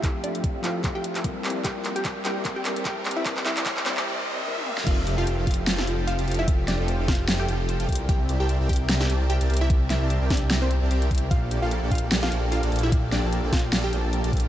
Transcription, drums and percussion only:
0.04 kick, clap, closed hi-hat
0.24 closed hi-hat
0.35 closed hi-hat
0.44 kick, closed hi-hat
0.64 clap, closed hi-hat
0.84 kick, clap, closed hi-hat
1.04 closed hi-hat
1.15 clap, closed hi-hat
1.24 kick, closed hi-hat
1.44 clap, closed hi-hat
1.50 closed hi-hat
1.65 kick, clap, closed hi-hat
1.85 clap, closed hi-hat
1.96 closed hi-hat
2.05 kick, clap, closed hi-hat
2.25 clap, closed hi-hat
2.45 kick, clap, closed hi-hat
2.65 clap, closed hi-hat
2.76 closed hi-hat
2.85 kick, clap, closed hi-hat
3.05 clap, closed hi-hat
3.11 closed hi-hat
3.26 kick, clap, closed hi-hat
3.37 clap
3.46 clap, closed hi-hat
3.57 clap, closed hi-hat
3.66 kick, clap, closed hi-hat
3.77 clap
3.86 clap, closed hi-hat
3.97 clap
4.58 high tom
4.67 mid tom
4.78 snare
4.87 kick, closed hi-hat, crash
5.07 closed hi-hat
5.27 closed hi-hat
5.47 kick, closed hi-hat
5.51 closed hi-hat
5.54 closed hi-hat
5.67 snare, closed hi-hat
5.78 snare
5.87 closed hi-hat
6.08 closed hi-hat
6.19 closed hi-hat
6.28 closed hi-hat
6.31 closed hi-hat
6.34 closed hi-hat
6.48 kick, closed hi-hat
6.68 snare, closed hi-hat
6.88 closed hi-hat
7.08 kick, snare, closed hi-hat
7.12 closed hi-hat
7.15 closed hi-hat
7.28 snare, closed hi-hat
7.49 closed hi-hat
7.69 closed hi-hat
7.80 closed hi-hat
7.89 kick, closed hi-hat
7.92 closed hi-hat
7.95 closed hi-hat
8.09 kick, closed hi-hat
8.29 closed hi-hat
8.49 closed hi-hat
8.69 kick, closed hi-hat
8.73 closed hi-hat
8.76 closed hi-hat
8.89 snare, closed hi-hat
9.01 snare
9.10 closed hi-hat
9.30 closed hi-hat
9.41 closed hi-hat
9.50 closed hi-hat
9.54 closed hi-hat
9.57 closed hi-hat
9.70 kick, closed hi-hat
9.90 snare, closed hi-hat
10.10 closed hi-hat
10.30 kick, snare, closed hi-hat
10.34 closed hi-hat
10.37 closed hi-hat
10.51 snare, closed hi-hat
10.71 closed hi-hat
10.91 closed hi-hat
11.02 closed hi-hat
11.11 kick, closed hi-hat
11.15 closed hi-hat
11.18 closed hi-hat
11.31 kick, closed hi-hat
11.51 closed hi-hat
11.71 closed hi-hat
11.91 kick, closed hi-hat
11.95 closed hi-hat
11.98 closed hi-hat
12.12 snare, closed hi-hat
12.23 snare
12.32 closed hi-hat
12.52 closed hi-hat
12.63 closed hi-hat
12.72 closed hi-hat
12.76 closed hi-hat
12.79 closed hi-hat
12.92 kick, closed hi-hat
13.12 snare, closed hi-hat
13.33 closed hi-hat
13.53 kick, snare, closed hi-hat
13.56 closed hi-hat
13.59 closed hi-hat
13.73 snare, closed hi-hat
13.93 closed hi-hat
14.13 closed hi-hat
14.24 closed hi-hat
14.33 kick, closed hi-hat
14.37 closed hi-hat
14.40 closed hi-hat

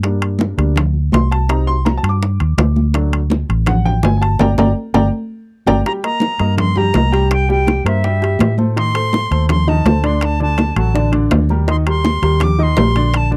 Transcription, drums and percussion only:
0.03 high bongo, high conga, high timbale
0.21 high conga, high timbale
0.39 high bongo, high conga, low timbale
0.58 high conga, high timbale
0.76 high bongo, high conga, low conga, high timbale
0.94 high conga
1.12 high bongo, low bongo, high conga, high timbale, low timbale
1.32 high timbale
1.49 high bongo, high conga, high timbale
1.68 high bongo, high conga
1.86 high bongo, high conga, high timbale, low timbale
2.04 high conga, high timbale
2.22 high bongo, high conga
2.40 high bongo, high conga, high timbale
2.58 high bongo, low bongo, high conga, high timbale, low timbale
2.76 high bongo, high conga
2.94 high bongo, high conga, high timbale
3.13 high conga, high timbale
3.30 high bongo, high conga, low timbale
3.49 high conga, high timbale
3.66 high bongo, high conga, low conga, high timbale
3.86 high conga, low conga
4.03 high bongo, low bongo, high conga, high timbale, low timbale
4.23 high timbale
4.39 low bongo, high conga, high timbale
4.58 low bongo, high conga, high timbale
4.94 low bongo, high conga, high timbale
5.67 low bongo, high conga, high timbale
5.85 high bongo, high conga, high timbale
6.03 high conga, high timbale
6.20 high bongo, high conga, low timbale
6.39 high conga, high timbale
6.58 high bongo, high conga, low conga, high timbale
6.76 high conga, low conga
6.94 high bongo, low bongo, high conga, high timbale, low timbale
7.14 high timbale
7.30 high bongo, high conga, high timbale
7.50 high bongo, high conga
7.67 high bongo, high conga, high timbale, low timbale
7.86 high conga, high timbale
8.04 high bongo, high conga
8.22 high bongo, high conga, high timbale
8.39 high bongo, low bongo, high conga, high timbale, low timbale
8.58 high bongo, high conga
8.76 high bongo, high conga, high timbale
8.95 high conga, high timbale
9.13 high bongo, high conga, low timbale
9.31 high conga, high timbale
9.49 high bongo, high conga, low conga, high timbale
9.68 high conga, low conga
9.86 high bongo, low bongo, high conga, high timbale, low timbale
10.04 high timbale
10.21 high bongo, high conga, high timbale
10.41 high bongo, high conga
10.58 high bongo, high conga, high timbale, low timbale
10.76 high conga, high timbale
10.95 high bongo, high conga
11.13 high bongo, high conga, high timbale
11.31 high bongo, low bongo, high conga, high timbale, low timbale
11.49 high bongo, high conga
11.68 high bongo, high conga, high timbale
11.87 high conga, high timbale
12.05 high bongo, high conga, low timbale
12.23 high conga, high timbale
12.40 high bongo, high conga, low conga, high timbale
12.61 high conga
12.77 high bongo, low bongo, high conga, high timbale, low timbale
12.96 high timbale
13.14 high bongo, high conga, high timbale
13.32 high bongo, high conga

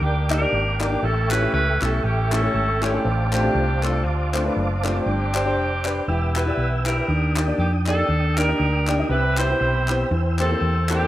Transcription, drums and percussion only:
0.30 clap
0.81 clap
1.31 clap
1.82 clap
2.32 clap
2.83 clap
3.33 clap
3.83 clap
4.34 clap
4.85 clap
5.35 clap
5.85 clap
6.36 clap
6.86 clap
7.36 clap
7.87 clap
8.38 clap
8.88 clap
9.38 clap
9.88 clap
10.39 clap
10.89 clap

